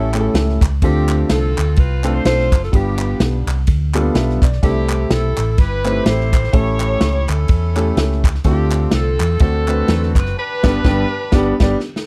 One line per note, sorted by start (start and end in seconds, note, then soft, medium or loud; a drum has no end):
0.00 0.27 A1 loud
0.00 0.58 A2 medium
0.00 0.58 C#4 medium
0.00 0.58 E4 medium
0.00 0.62 A4 medium
0.14 0.58 A3 medium
0.14 0.58 C#4 medium
0.14 0.58 E4 medium
0.14 0.58 G4 medium
0.14 0.19 G#4 medium
0.14 clap loud
0.14 ride medium
0.21 0.61 A4 medium
0.34 0.57 C#2 loud
0.34 snare loud
0.34 ride medium
0.49 snare soft
0.61 0.79 C#2 loud
0.61 kick loud
0.61 clap loud
0.61 ride medium
0.82 1.23 D2 loud
0.82 1.54 D3 medium
0.82 1.43 A3 medium
0.82 1.27 C4 medium
0.82 1.43 C4 medium
0.82 1.43 D4 medium
0.82 1.43 F4 medium
0.82 1.26 G4 medium
0.82 1.43 A4 medium
0.82 kick loud
0.82 ride medium
1.09 clap loud
1.09 ride medium
1.28 1.53 C2 loud
1.28 2.20 C4 medium
1.28 1.77 F4 medium
1.28 1.77 A4 loud
1.28 snare loud
1.28 ride medium
1.57 1.75 D2 loud
1.57 clap loud
1.57 ride medium
1.76 2.18 C2 loud
1.76 2.23 F4 medium
1.76 2.15 B4 loud
1.76 kick loud
1.76 ride medium
2.04 2.48 A3 medium
2.04 2.48 C4 medium
2.04 2.48 D4 medium
2.04 2.48 F4 medium
2.04 2.48 A4 medium
2.04 clap medium
2.04 ride medium
2.14 2.23 C5 loud
2.24 2.48 B1 medium
2.24 2.69 F4 medium
2.24 2.62 A4 medium
2.24 2.60 C5 loud
2.24 snare loud
2.24 ride medium
2.40 snare soft
2.52 2.69 F#1 medium
2.52 kick loud
2.52 clap loud
2.52 ride medium
2.63 2.73 A4 medium
2.63 snare soft
2.72 3.13 G1 loud
2.72 3.43 G2 medium
2.72 3.33 G3 medium
2.72 3.33 B3 medium
2.72 3.64 B3 medium
2.72 3.33 D4 medium
2.72 3.64 D4 medium
2.72 3.33 F4 medium
2.72 3.33 G4 medium
2.72 3.21 G4 medium
2.72 kick loud
2.72 ride medium
2.99 clap loud
2.99 ride medium
3.20 3.43 B1 medium
3.20 snare loud
3.20 ride medium
3.47 3.64 C2 medium
3.47 clap loud
3.47 ride medium
3.67 4.08 D2 medium
3.67 kick loud
3.67 ride medium
3.94 4.38 G3 medium
3.94 4.00 A#3 medium
3.94 4.39 D4 medium
3.94 4.39 F4 medium
3.94 4.39 A4 medium
3.94 clap loud
3.94 ride medium
4.01 4.42 B3 medium
4.14 4.38 B1 loud
4.14 4.41 E5 medium
4.14 snare loud
4.14 ride medium
4.30 snare soft
4.42 4.60 B1 medium
4.42 4.88 D5 medium
4.42 kick loud
4.42 clap loud
4.42 ride medium
4.52 snare soft
4.63 5.04 C2 loud
4.63 5.34 C3 medium
4.63 5.24 A3 medium
4.63 5.24 C4 medium
4.63 4.70 D4 medium
4.63 5.09 E4 medium
4.63 5.07 G4 loud
4.63 5.24 G4 medium
4.63 5.24 A4 medium
4.63 kick loud
4.63 ride medium
4.69 5.27 E4 medium
4.89 clap loud
4.89 ride medium
5.09 5.34 B1 medium
5.09 5.57 E4 medium
5.09 5.58 A4 medium
5.09 snare loud
5.09 ride medium
5.37 5.55 A1 medium
5.37 clap loud
5.37 ride medium
5.57 5.99 G1 loud
5.57 6.04 E4 medium
5.57 6.50 G4 medium
5.57 6.06 B4 loud
5.57 kick loud
5.57 ride medium
5.85 6.29 A3 medium
5.85 6.29 C4 medium
5.85 5.90 D#4 medium
5.85 6.29 G4 medium
5.85 6.29 C5 medium
5.85 clap medium
5.85 ride medium
5.91 6.32 E4 medium
6.03 6.46 A1 loud
6.03 6.50 E4 medium
6.03 6.50 A4 medium
6.03 6.52 C5 loud
6.03 snare loud
6.03 ride medium
6.20 snare soft
6.33 kick loud
6.33 clap loud
6.33 ride medium
6.44 snare soft
6.51 6.94 A1 loud
6.51 7.25 A2 medium
6.51 7.14 A3 medium
6.51 7.14 C#4 medium
6.51 7.14 E4 medium
6.51 7.28 E4 medium
6.51 7.14 G4 medium
6.51 7.45 G4 medium
6.51 7.14 A4 medium
6.51 7.28 C#5 loud
6.51 kick loud
6.51 ride medium
6.80 clap loud
6.80 ride medium
7.01 7.25 C#2 loud
7.01 snare loud
7.01 ride medium
7.28 7.46 D2 loud
7.28 8.21 C#4 medium
7.28 8.21 E4 medium
7.28 8.24 A4 loud
7.28 clap loud
7.28 ride medium
7.48 7.90 E2 loud
7.48 kick loud
7.48 ride medium
7.76 8.20 A3 medium
7.76 8.20 C#4 medium
7.76 8.21 E4 medium
7.76 8.21 G4 medium
7.76 8.21 A4 medium
7.76 clap medium
7.76 ride medium
7.97 8.38 C#2 medium
7.97 snare loud
7.97 ride medium
8.12 snare soft
8.24 kick loud
8.24 clap loud
8.24 ride medium
8.35 snare soft
8.44 8.86 D2 loud
8.44 9.17 D3 medium
8.44 9.06 A3 medium
8.44 8.91 C4 medium
8.44 9.06 C4 medium
8.44 9.06 D4 medium
8.44 8.52 E4 medium
8.44 8.90 G4 medium
8.44 9.06 A4 medium
8.44 kick loud
8.44 ride medium
8.51 9.09 F4 medium
8.71 clap loud
8.71 ride medium
8.91 9.16 C2 medium
8.91 9.37 C4 medium
8.91 9.37 F4 medium
8.91 9.39 A4 medium
8.91 snare loud
8.91 ride medium
9.20 9.38 E2 loud
9.20 clap loud
9.20 ride medium
9.39 9.82 D2 medium
9.39 10.12 D3 medium
9.39 9.63 A3 medium
9.39 10.32 C4 medium
9.39 9.63 C4 medium
9.39 9.63 D4 medium
9.39 10.32 F#4 medium
9.39 9.63 F#4 medium
9.39 10.12 A4 loud
9.39 9.63 A4 medium
9.39 kick loud
9.39 ride medium
9.68 10.12 A3 medium
9.68 10.12 C4 medium
9.68 10.13 D4 medium
9.68 10.13 F#4 medium
9.68 10.13 B4 medium
9.68 clap medium
9.68 ride medium
9.88 10.12 E2 medium
9.88 snare loud
9.88 ride medium
10.03 snare soft
10.15 10.33 F#1 medium
10.15 10.36 B4 loud
10.15 kick loud
10.15 clap loud
10.15 ride medium
10.26 snare soft
10.36 11.76 D4 medium
10.36 11.77 G4 medium
10.36 11.77 B4 loud
10.63 10.78 G1 loud
10.63 10.78 G2 medium
10.63 10.78 G3 loud
10.63 10.78 B3 loud
10.63 10.78 D4 loud
10.63 10.78 G4 loud
10.63 10.78 B4 loud
10.63 kick loud
10.63 snare loud
10.63 crash medium
10.84 11.03 G1 loud
10.84 11.04 G2 loud
10.84 11.04 G3 loud
10.84 11.04 B3 loud
10.84 11.04 D4 loud
10.84 11.04 G4 loud
10.84 11.04 B4 loud
10.84 kick loud
10.84 snare loud
11.32 11.51 G1 loud
11.32 11.52 G3 loud
11.32 11.52 B3 loud
11.32 11.52 D4 loud
11.32 11.52 G4 medium
11.32 11.52 D5 loud
11.32 kick loud
11.32 snare loud
11.60 11.74 G1 loud
11.60 11.74 G3 loud
11.60 11.75 B3 medium
11.60 11.75 D4 medium
11.60 11.75 G4 loud
11.60 11.75 D5 loud
11.60 kick loud
11.60 snare loud
11.60 crash medium
11.80 snare medium
11.96 snare medium